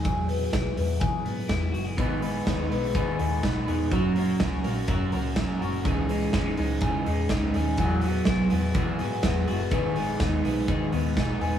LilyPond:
<<
  \new Staff \with { instrumentName = "Clean electric guitar" } { \time 4/4 \key gis \minor \tempo 4 = 124 <fis gis'>8 b8 e'8 b8 gis'8 b8 e'8 fis'16 gis'16 | <b gis'>8 b8 cis'16 dis'16 b8 gis'8 b8 dis'8 gis'8 | <fis fis'>8 ais8 cis'8 ais8 fis'8 ais8 cis'8 fis'8 | <e gis'>8 gis8 cis'16 dis'16 gis8 gis'8 gis8 dis'8 gis'8 |
<fis gis'>8 b8 e'8 b8 gis'8 b8 e'8 fis'16 gis'16 | <b gis'>8 b8 dis'8 b8 gis'8 b8 dis'8 gis'8 | }
  \new Staff \with { instrumentName = "Clean electric guitar" } { \time 4/4 \key gis \minor r1 | <gis, dis gis b dis' b'>8 <gis b dis' b'>8 <gis b dis' b'>8 <gis b dis' b'>8 <gis, dis gis b dis' b'>8 <gis b dis' b'>8 <gis b dis' b'>8 <gis b dis' b'>8 | <fis cis' fis' ais'>8 <cis' fis' ais'>8 <fis cis' fis' ais'>8 <cis' fis' ais'>8 <fis cis' fis' ais'>8 <cis' fis' ais'>8 <fis cis' fis' ais'>8 <cis' fis' ais'>8 | <cis e gis cis' dis' gis'>8 <gis cis' dis' gis'>8 <gis cis' dis' gis'>8 <gis cis' dis' gis'>8 <cis e gis cis' dis' gis'>8 <gis cis' dis' gis'>8 <gis cis' dis' gis'>8 <gis cis' dis' gis'>8 |
<e fis b fis' gis'>8 <b fis' gis'>8 <fis b fis' gis'>8 <b fis' gis'>8 <e fis b fis' gis'>8 <b fis' gis'>8 <fis b fis' gis'>8 <b fis' gis'>8 | <gis, dis gis b dis' gis'>8 <gis b dis' gis'>8 <gis b dis' gis'>8 <gis b dis' gis'>8 <gis, dis gis b dis' gis'>8 <gis b dis' gis'>8 <gis b dis' gis'>8 <gis b dis' gis'>8 | }
  \new Staff \with { instrumentName = "Picked electric bass" } { \clef bass \time 4/4 \key gis \minor e,4 b,,8 e,8 e8 gis,8 e,8 fis,,8 | gis,,4 dis,8 b,,8 gis,8 dis,8 b,,8 e,,8 | fis,,4 cis,8 ais,,8 fis,8 cis,8. r16 fis,,8 | cis,4 gis,,8 cis,8 cis8 e,8 cis,8 dis,8 |
e,4 b,,8 e,8 e8 gis,8 e,8 fis,,8 | gis,,4 dis,8 b,,8 gis,8 dis,8 b,,8 e,,8 | }
  \new DrumStaff \with { instrumentName = "Drums" } \drummode { \time 4/4 <hhp bd cymr>8 hho8 <hhp bd cymr sn>8 hho8 <hhp bd cymr>8 hho8 <bd cymr sn>8 hho8 | <hhp bd cymr>8 hho8 <hhp bd cymr sn>8 hho8 <hhp bd cymr>8 hho8 <hhp bd cymr sn>8 hho8 | <hhp bd cymr>8 hho8 <hhp bd cymr sn>8 hho8 <hhp bd cymr>8 hho8 <hhp bd cymr sn>8 hho8 | <hhp bd cymr>8 hho8 <bd cymr sn>8 hho8 <hhp bd cymr>8 hho8 <hhp bd cymr sn>8 hho8 |
<hhp bd cymr>8 hho8 <bd cymr sn>8 hho8 <hhp bd cymr>8 hho8 <hhp bd cymr sn>8 hho8 | <hhp bd cymr>8 hho8 <bd cymr sn>8 hho8 <hhp bd cymr>8 hho8 <hhp bd cymr sn>8 hho8 | }
>>